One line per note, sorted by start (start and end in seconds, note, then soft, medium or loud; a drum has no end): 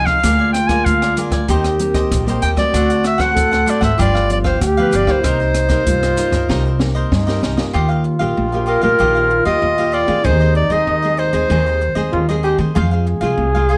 0.00 0.21 C3 medium
0.00 0.19 F3 medium
0.00 0.19 G#3 medium
0.00 0.19 D#4 medium
0.00 0.20 D#4 medium
0.06 0.22 G#4 soft
0.06 0.22 C5 soft
0.06 0.21 F5 soft
0.06 0.52 F5 medium
0.06 kick medium
0.06 cross-stick medium
0.23 0.77 D2 loud
0.23 0.83 D3 medium
0.23 0.65 G#3 medium
0.23 0.66 A#3 medium
0.23 0.38 D4 medium
0.23 1.45 F4 loud
0.23 0.66 F4 medium
0.23 0.38 A#4 medium
0.23 0.39 D5 medium
0.23 0.38 G#5 medium
0.23 kick medium
0.23 cross-stick medium
0.23 closed hi-hat medium
0.39 0.54 A#4 soft
0.39 0.54 D5 soft
0.39 0.54 G#5 medium
0.53 0.69 G5 medium
0.53 muted cavaquinho stroke soft
0.53 cross-stick medium
0.53 closed hi-hat soft
0.67 1.12 G#3 medium
0.67 1.12 A#3 medium
0.67 1.13 F4 medium
0.67 1.01 D5 medium
0.67 0.87 G#5 medium
0.67 1.00 G#5 medium
0.67 kick medium
0.67 cross-stick medium
0.67 closed hi-hat soft
0.72 1.01 A#4 medium
0.85 1.13 D2 medium
0.85 1.46 D3 medium
0.85 1.17 F5 medium
0.85 kick medium
0.85 closed hi-hat medium
1.02 1.16 A#4 soft
1.02 1.17 D5 soft
1.02 1.16 G#5 soft
1.02 cross-stick medium
1.02 closed hi-hat soft
1.16 1.36 G#3 medium
1.16 1.36 A#3 medium
1.16 1.31 D4 soft
1.16 1.36 F4 medium
1.16 1.32 A#4 medium
1.16 1.32 D5 medium
1.16 1.31 G#5 medium
1.16 closed hi-hat medium
1.30 1.45 D2 medium
1.30 1.48 A#4 medium
1.30 1.47 D5 medium
1.30 1.47 G#5 medium
1.30 kick medium
1.30 cross-stick medium
1.30 closed hi-hat soft
1.48 2.02 D#2 loud
1.48 2.08 D#3 medium
1.48 1.75 A#3 soft
1.48 1.75 C4 medium
1.48 1.63 D#4 medium
1.48 2.43 G4 loud
1.48 1.64 G4 medium
1.48 1.76 G4 medium
1.48 1.64 C5 medium
1.48 1.64 D#5 medium
1.48 kick medium
1.48 closed hi-hat medium
1.64 1.80 G4 soft
1.64 1.80 C5 soft
1.64 1.79 D#5 medium
1.64 cross-stick medium
1.64 closed hi-hat soft
1.79 2.09 A#3 medium
1.79 2.09 C4 medium
1.79 2.09 G4 medium
1.79 muted cavaquinho stroke soft
1.79 closed hi-hat soft
1.94 2.26 G4 medium
1.94 2.26 C5 medium
1.94 2.25 D#5 medium
1.94 kick medium
1.94 cross-stick medium
1.94 closed hi-hat soft
2.11 2.38 A#1 loud
2.11 2.71 A#2 medium
2.11 kick medium
2.11 cross-stick medium
2.11 closed hi-hat medium
2.27 2.53 A#3 medium
2.27 2.53 C4 medium
2.27 2.53 G4 medium
2.27 2.42 G4 medium
2.27 2.43 C5 medium
2.27 2.42 D#5 medium
2.27 closed hi-hat soft
2.42 2.56 D#2 medium
2.42 2.57 D#4 soft
2.42 2.57 G4 soft
2.42 2.57 C5 medium
2.42 2.56 D#5 medium
2.42 2.50 G5 loud
2.42 closed hi-hat soft
2.56 3.15 A3 medium
2.56 3.15 C4 medium
2.56 3.15 F#4 medium
2.56 2.73 G4 soft
2.56 2.73 C5 soft
2.56 3.02 D5 loud
2.56 2.72 D#5 soft
2.56 kick medium
2.56 cross-stick medium
2.56 closed hi-hat soft
2.73 3.27 D2 loud
2.73 3.33 D3 medium
2.73 2.88 D4 medium
2.73 3.32 F#4 loud
2.73 2.89 A4 medium
2.73 2.89 C5 medium
2.73 2.89 F#5 medium
2.73 kick medium
2.73 cross-stick medium
2.73 closed hi-hat medium
2.90 3.03 A4 soft
2.90 3.03 C5 soft
2.90 3.04 F#5 soft
2.90 closed hi-hat soft
3.04 3.22 E5 loud
3.04 muted cavaquinho stroke soft
3.04 cross-stick medium
3.04 closed hi-hat soft
3.18 3.62 A3 medium
3.18 3.62 C4 medium
3.18 3.62 F#4 medium
3.18 3.51 A4 medium
3.18 3.50 C5 medium
3.18 3.49 F#5 medium
3.18 3.71 F#5 loud
3.18 kick medium
3.18 cross-stick medium
3.18 closed hi-hat soft
3.35 3.63 D2 medium
3.35 3.96 A2 medium
3.35 3.94 A4 loud
3.35 kick medium
3.35 closed hi-hat medium
3.51 3.66 A4 soft
3.51 3.67 C5 soft
3.51 3.66 F#5 soft
3.51 cross-stick medium
3.51 closed hi-hat soft
3.66 3.86 A3 medium
3.66 3.86 C4 soft
3.66 3.81 D4 medium
3.66 3.86 F#4 medium
3.66 3.82 A4 soft
3.66 3.81 C5 medium
3.66 3.83 D5 medium
3.66 3.80 F#5 medium
3.66 closed hi-hat soft
3.81 3.95 G#1 medium
3.81 3.98 A4 medium
3.81 3.97 C5 medium
3.81 3.98 E5 medium
3.81 3.97 F#5 medium
3.81 kick medium
3.81 cross-stick medium
3.81 closed hi-hat soft
3.97 4.52 G1 loud
3.97 4.59 G2 medium
3.97 4.17 F3 medium
3.97 4.18 B3 medium
3.97 4.13 D4 medium
3.97 4.18 D4 medium
3.97 4.57 F4 loud
3.97 4.13 G4 medium
3.97 4.14 B4 medium
3.97 4.13 F5 medium
3.97 kick medium
3.97 closed hi-hat medium
4.01 4.29 D5 loud
4.14 4.29 G4 soft
4.14 4.29 B4 soft
4.14 4.29 F5 soft
4.14 cross-stick medium
4.29 4.59 F3 medium
4.29 4.59 B3 medium
4.29 4.60 D4 medium
4.29 4.39 D5 medium
4.29 muted cavaquinho stroke soft
4.29 closed hi-hat soft
4.44 4.76 G4 medium
4.44 4.60 C5 medium
4.44 4.75 F5 medium
4.44 kick medium
4.44 cross-stick medium
4.60 4.88 D2 medium
4.60 5.21 D3 medium
4.60 5.24 G4 loud
4.60 kick medium
4.60 cross-stick medium
4.60 closed hi-hat medium
4.77 5.04 F3 medium
4.77 5.04 B3 medium
4.77 5.04 D4 medium
4.77 4.91 G4 medium
4.77 4.92 B4 medium
4.77 4.98 B4 medium
4.77 4.92 F5 medium
4.91 5.06 G1 medium
4.91 5.07 D4 soft
4.91 5.07 G4 medium
4.91 5.07 B4 medium
4.91 5.06 F5 medium
4.91 closed hi-hat soft
4.96 5.13 D5 medium
5.07 5.66 A#3 medium
5.07 5.66 D#4 medium
5.07 5.66 G4 medium
5.07 5.23 G4 soft
5.07 5.23 B4 soft
5.07 5.22 F5 soft
5.07 kick medium
5.07 cross-stick medium
5.11 7.13 C5 loud
5.23 5.77 C2 loud
5.23 5.83 C3 medium
5.23 5.87 D#4 loud
5.23 5.38 D#4 medium
5.23 5.39 A#4 medium
5.23 5.39 C5 medium
5.23 5.39 D#5 medium
5.23 kick medium
5.23 cross-stick medium
5.23 closed hi-hat medium
5.40 5.54 A#4 soft
5.40 5.55 C5 soft
5.40 5.54 D#5 soft
5.54 muted cavaquinho stroke soft
5.54 cross-stick medium
5.54 closed hi-hat soft
5.69 6.13 A#3 medium
5.69 6.13 D#4 medium
5.69 6.13 G4 medium
5.69 6.01 A#4 medium
5.69 6.01 C5 medium
5.69 6.00 D#5 medium
5.69 kick medium
5.69 cross-stick medium
5.69 closed hi-hat soft
5.86 6.14 C2 medium
5.86 6.46 G2 soft
5.86 6.84 F4 loud
5.86 kick medium
5.86 closed hi-hat medium
6.03 6.16 A#4 soft
6.03 6.17 C5 soft
6.03 6.17 D#5 soft
6.03 cross-stick medium
6.03 closed hi-hat soft
6.16 6.44 A#3 medium
6.16 6.32 D#4 soft
6.16 6.44 D#4 medium
6.16 6.44 G4 medium
6.16 6.32 A#4 medium
6.16 6.32 C5 medium
6.16 6.31 D#5 medium
6.16 closed hi-hat medium
6.31 6.46 G2 medium
6.31 6.49 A#4 medium
6.31 6.48 C5 medium
6.31 6.47 D#5 medium
6.31 kick medium
6.31 cross-stick medium
6.31 closed hi-hat soft
6.48 7.03 C2 loud
6.48 7.08 C3 medium
6.48 6.67 A#3 medium
6.48 6.68 D#4 medium
6.48 6.64 D#4 medium
6.48 6.68 G4 medium
6.48 6.64 A#4 medium
6.48 6.65 C5 medium
6.48 6.64 D#5 medium
6.48 kick medium
6.48 snare soft
6.66 6.80 A#4 soft
6.66 6.80 C5 soft
6.66 6.80 D#5 soft
6.79 7.22 A#3 medium
6.79 7.22 D#4 medium
6.79 7.22 G4 medium
6.79 muted cavaquinho stroke soft
6.79 snare medium
6.95 7.27 A#4 medium
6.95 7.26 C5 medium
6.95 7.26 D#5 medium
7.11 7.71 G2 medium
7.11 7.39 G2 medium
7.11 7.70 D#4 medium
7.11 kick medium
7.11 snare medium
7.27 7.54 A#3 medium
7.27 7.54 D#4 medium
7.27 7.54 G4 medium
7.27 7.42 A#4 medium
7.27 7.42 C5 medium
7.27 7.42 D#5 medium
7.27 snare medium
7.42 7.56 C2 medium
7.42 7.57 D#4 soft
7.42 7.58 A#4 medium
7.42 7.57 C5 medium
7.42 7.56 D#5 medium
7.42 snare medium
7.57 8.15 A#3 medium
7.57 8.16 F4 medium
7.57 8.16 G4 medium
7.57 7.73 A#4 soft
7.57 7.73 C5 soft
7.57 7.73 D#5 soft
7.57 snare medium
7.73 8.14 D#2 loud
7.73 8.34 D#3 medium
7.73 7.88 F4 medium
7.73 10.27 F4 loud
7.73 7.89 G4 medium
7.73 7.89 D#5 medium
7.73 7.87 F5 medium
7.88 8.03 G4 soft
7.88 8.04 D#5 soft
7.88 8.04 F5 soft
8.04 muted cavaquinho stroke soft
8.19 8.34 A#1 medium
8.19 8.47 A#3 medium
8.19 8.47 F4 medium
8.19 8.47 G4 medium
8.19 8.52 G4 medium
8.19 8.51 D#5 medium
8.19 8.50 F5 medium
8.37 8.77 A#1 medium
8.37 8.97 A#2 medium
8.52 8.80 A#3 medium
8.52 8.80 F4 medium
8.52 8.65 G4 soft
8.52 8.80 G4 medium
8.52 8.66 D#5 soft
8.52 8.67 F5 soft
8.66 8.82 F4 soft
8.66 8.82 G4 medium
8.66 8.83 A#4 medium
8.66 8.81 D#5 medium
8.66 8.80 F5 medium
8.81 8.97 A#1 medium
8.81 8.94 A#3 medium
8.81 8.94 F4 medium
8.81 8.98 G4 medium
8.81 8.95 G4 medium
8.81 9.42 A#4 loud
8.81 8.98 D#5 medium
8.81 8.97 F5 medium
8.99 9.40 A#1 loud
8.99 9.59 D#3 medium
8.99 9.29 A#3 medium
8.99 9.14 F4 medium
8.99 9.29 F4 medium
8.99 9.14 G4 medium
8.99 9.30 G4 medium
8.99 9.14 D#5 medium
8.99 9.14 F5 medium
9.15 9.30 G4 soft
9.15 9.30 D#5 soft
9.15 9.30 F5 soft
9.30 muted cavaquinho stroke soft
9.45 9.59 D#2 medium
9.45 9.72 A#3 medium
9.45 9.73 F4 medium
9.45 9.73 G4 medium
9.45 9.77 G4 medium
9.45 9.95 D#5 loud
9.45 9.77 D#5 medium
9.45 9.76 F5 medium
9.62 10.02 D#2 medium
9.62 10.22 A#2 medium
9.78 10.04 A#3 medium
9.78 10.05 F4 medium
9.78 10.05 G4 medium
9.78 9.92 G4 medium
9.78 9.92 D#5 medium
9.78 9.92 F5 medium
9.92 10.07 F4 medium
9.92 10.08 G4 medium
9.92 10.27 D5 loud
9.92 10.08 D#5 medium
9.92 10.06 F5 medium
10.07 10.26 D#3 loud
10.07 10.66 G#3 medium
10.07 10.66 C4 medium
10.07 10.24 G4 soft
10.07 10.66 G#4 medium
10.07 10.23 D#5 soft
10.07 10.23 F5 medium
10.24 10.65 D#2 loud
10.24 10.84 D#3 medium
10.24 10.39 D#4 medium
10.24 11.86 D#4 loud
10.24 10.39 G#4 medium
10.24 10.56 C5 loud
10.24 10.40 C5 medium
10.24 10.39 D#5 medium
10.40 10.54 G#4 soft
10.40 10.54 C5 soft
10.40 10.55 D#5 soft
10.55 10.73 D5 medium
10.55 muted cavaquinho stroke soft
10.70 10.84 D#2 medium
10.70 10.97 G#3 medium
10.70 10.98 C4 medium
10.70 10.98 G#4 medium
10.70 11.02 G#4 medium
10.70 11.01 C5 medium
10.70 11.01 D#5 medium
10.70 11.21 D#5 loud
10.87 11.27 D#2 medium
10.87 11.47 D#3 medium
11.02 11.30 G#3 medium
11.02 11.30 C4 medium
11.02 11.17 G#4 soft
11.02 11.30 G#4 medium
11.02 11.18 C5 soft
11.02 11.17 D#5 soft
11.17 11.32 D#4 soft
11.17 11.33 G#4 medium
11.17 11.33 C5 medium
11.17 12.44 C5 medium
11.17 11.32 D#5 medium
11.33 11.47 D#2 medium
11.33 11.44 G#3 medium
11.33 11.45 C4 medium
11.33 11.45 G#4 medium
11.33 11.49 G#4 medium
11.33 11.49 C5 medium
11.33 11.48 D#5 medium
11.49 11.90 D#2 loud
11.49 12.09 D#3 medium
11.49 11.79 G#3 medium
11.49 11.79 C4 medium
11.49 11.65 D#4 medium
11.49 11.79 G#4 medium
11.49 11.65 G#4 medium
11.49 11.65 C5 medium
11.49 11.65 D#5 medium
11.66 11.80 G#4 soft
11.66 11.81 C5 soft
11.66 11.80 D#5 soft
11.81 muted cavaquinho stroke soft
11.95 12.09 D#2 medium
11.95 12.22 G#3 medium
11.95 12.23 C4 medium
11.95 12.23 G#4 medium
11.95 12.27 G#4 medium
11.95 12.27 C5 medium
11.95 12.26 D#5 medium
12.12 12.53 D#2 loud
12.12 12.72 D#3 medium
12.12 12.26 F4 loud
12.29 12.71 G#3 medium
12.29 12.71 C4 medium
12.29 12.71 G#4 medium
12.29 12.43 G#4 medium
12.29 12.43 C5 medium
12.29 12.43 D#5 medium
12.43 12.58 D#4 medium
12.43 12.58 G4 loud
12.43 12.58 G#4 medium
12.43 12.59 C5 medium
12.43 12.57 D#5 medium
12.58 12.77 D#3 loud
12.58 12.74 G#4 soft
12.58 12.74 C5 soft
12.58 12.73 D#5 medium
12.75 13.16 F2 loud
12.75 13.35 F3 medium
12.75 13.17 G#3 medium
12.75 13.17 C4 medium
12.75 12.90 F4 medium
12.75 13.18 F4 medium
12.75 13.78 G#4 loud
12.75 12.90 G#4 medium
12.75 12.90 C5 medium
12.75 12.90 F5 medium
12.91 13.06 G#4 soft
12.91 13.06 C5 soft
12.91 13.05 F5 medium
13.06 muted cavaquinho stroke soft
13.21 13.35 C2 medium
13.21 13.48 G#3 medium
13.21 13.48 C4 medium
13.21 13.49 F4 medium
13.21 13.53 G#4 medium
13.21 13.52 C5 medium
13.21 13.51 F5 medium
13.38 13.78 C2 medium
13.38 13.78 C3 medium
13.55 13.78 G#3 medium
13.55 13.78 C4 medium
13.55 13.78 F4 medium
13.55 13.69 G#4 soft
13.55 13.69 C5 soft
13.55 13.68 F5 soft
13.69 13.78 F4 medium
13.69 13.78 G#4 medium
13.69 13.78 C5 medium
13.69 13.78 F5 medium